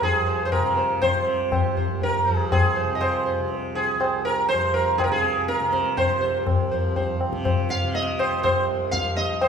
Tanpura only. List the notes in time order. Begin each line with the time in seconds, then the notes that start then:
Already playing: C2 C3
0.03 F2
0.60 C3
1.15 C3
1.72 C2
2.27 F2
2.84 C3
3.40 C3
3.95 C2
4.52 F2
5.07 C3
5.61 C3
6.18 C2
6.73 F2
7.29 C3
7.84 C3
8.39 C2
8.94 F2